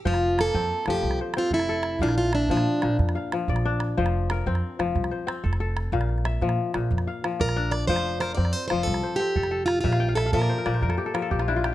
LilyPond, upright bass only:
\new Staff \with { instrumentName = "Upright bass" } { \clef bass \time 12/8 \key f \major \tempo 4. = 123 f,,4. f,8 r8 f,,8 c,8 r4 f,,4. | bes,,4. bes,8 r8 bes,,8 f,8 r4 bes,,4. | f,,4. f,8 r8 f,,8 c,8 r4 f,,4. | bes,,4. bes,8 r8 bes,,8 f,8 r4 bes,,4. |
f,,4. f,8 r8 f,,8 c,8 r4 f,,4. | bes,,4. bes,8 r8 bes,,8 f,8 r4 bes,,4. | }